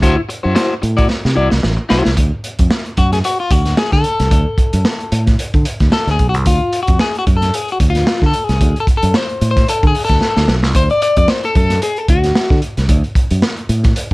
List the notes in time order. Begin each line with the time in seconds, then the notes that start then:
0.02 D2 E4 F#4 C5, kick, closed hi-hat
0.17 muted clean electric guitar stroke
0.29 muted clean electric guitar stroke, closed hi-hat
0.43 F#2 E4 F#4 C5
0.55 E4 F#4 C5, snare, closed hi-hat
0.82 A2, muted clean electric guitar stroke, closed hi-hat
0.97 E4 F#4 D5, kick, closed hi-hat
1.09 muted clean electric guitar stroke, snare
1.25 C3, snare
1.35 C2 E4 F#4 D5
1.50 C2, muted clean electric guitar stroke, snare
1.63 A1, snare
1.77 muted clean electric guitar stroke
1.89 B1 E4 F#4 C5, snare
2.04 C2, muted clean electric guitar stroke, snare
2.17 D2, kick, closed hi-hat
2.44 closed hi-hat
2.59 F2, kick, closed hi-hat
2.71 snare
2.86 closed hi-hat
2.97 F#2 F#4, kick, closed hi-hat
3.12 G#4, snare, closed hi-hat
3.24 F#4, closed hi-hat
3.40 F4
3.51 D2 F#4, kick, closed hi-hat
3.65 snare, closed hi-hat
3.77 G#4, snare
3.92 D3 A4, kick, snare, closed hi-hat
4.04 closed hi-hat
4.20 C2, snare, closed hi-hat
4.31 D2, kick, closed hi-hat
4.58 kick, closed hi-hat
4.73 F#2, closed hi-hat
4.85 snare
5.00 closed hi-hat
5.12 A2, closed hi-hat
5.26 kick, snare, closed hi-hat
5.39 muted fingered electric bass stroke, closed hi-hat
5.54 D3, kick, closed hi-hat
5.65 closed hi-hat
5.80 D2, kick, snare, closed hi-hat
5.92 A4, snare
6.07 D2 G#4, snare, closed hi-hat
6.19 B1, kick, closed hi-hat
6.29 F#4
6.34 C2, closed hi-hat
6.46 D2 F4, kick, closed hi-hat
6.73 closed hi-hat
6.83 F#4
6.88 F2, kick, closed hi-hat
6.99 G#4, snare
7.15 F#4, closed hi-hat
7.27 F#2, kick, closed hi-hat
7.37 A4
7.42 snare, closed hi-hat
7.54 G#4, closed hi-hat
7.68 F#4, closed hi-hat
7.80 D2, kick, closed hi-hat
7.90 F4
7.95 snare, closed hi-hat
8.07 snare
8.22 D3, kick, snare
8.26 A4
8.34 closed hi-hat
8.44 G#4
8.49 C2, snare, closed hi-hat
8.61 D2, kick, closed hi-hat
8.76 closed hi-hat
8.80 A4
8.87 kick, closed hi-hat
8.97 A4
9.03 F#2, closed hi-hat
9.14 C5, snare
9.29 closed hi-hat
9.41 A2, closed hi-hat
9.51 C5
9.56 kick, snare, closed hi-hat
9.68 A4, muted fingered electric bass stroke, closed hi-hat
9.83 D3, kick, closed hi-hat
9.87 G#4
9.95 open hi-hat
10.05 A4
10.09 D2, kick, snare, closed hi-hat
10.21 snare
10.37 D2, snare
10.48 B1, snare
10.63 C2, snare
10.75 D2 C5, kick, closed hi-hat
10.90 D5, closed hi-hat
11.02 D5, closed hi-hat
11.17 F2 D5, kick, closed hi-hat
11.28 C5, snare
11.44 A4, closed hi-hat
11.55 F#2 A4, kick, closed hi-hat
11.70 snare, closed hi-hat
11.82 G#4, closed hi-hat
11.96 A4, closed hi-hat
12.08 D2 F#4, kick, closed hi-hat
12.24 snare, closed hi-hat
12.35 snare
12.50 D3, kick, snare
12.62 closed hi-hat
12.77 C2, snare, closed hi-hat
12.89 D2, kick, closed hi-hat
13.04 closed hi-hat
13.15 kick, closed hi-hat
13.31 F#2, closed hi-hat
13.42 snare
13.57 closed hi-hat
13.69 A2, closed hi-hat
13.83 kick, snare, closed hi-hat
13.96 closed hi-hat
14.11 closed hi-hat